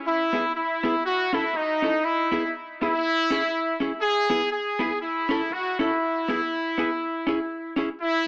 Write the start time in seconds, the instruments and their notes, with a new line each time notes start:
0.05 horn section E4
0.33 hollow-body jazz guitar B3 E4 G#4
0.55 horn section E4
0.83 hollow-body jazz guitar B3 E4 G#4
1.05 horn section F#4
1.33 hollow-body jazz guitar C#4 E4 A4, horn section E4
1.53 horn section D#4, muted hollow-body jazz guitar stroke
1.82 hollow-body jazz guitar C#4 E4 A4
2.04 horn section E4
2.32 hollow-body jazz guitar B3 E4 G#4
2.81 hollow-body jazz guitar B3 E4 G#4, horn section E4
3.30 hollow-body jazz guitar C#4 E4 G#4
3.80 hollow-body jazz guitar C#4 E4 G#4
4.00 horn section G#4
4.30 hollow-body jazz guitar B3 E4 G#4
4.51 horn section G#4
4.79 hollow-body jazz guitar B3 E4 G#4
5.01 horn section E4
5.29 hollow-body jazz guitar C#4 E4 A4
5.50 horn section F#4, muted hollow-body jazz guitar stroke
5.79 hollow-body jazz guitar C#4 E4 A4, horn section E4
6.28 hollow-body jazz guitar B3 E4 G#4
6.78 hollow-body jazz guitar B3 E4 G#4
7.27 hollow-body jazz guitar C#4 E4 G#4
7.76 hollow-body jazz guitar C#4 E4 G#4
8.00 horn section E4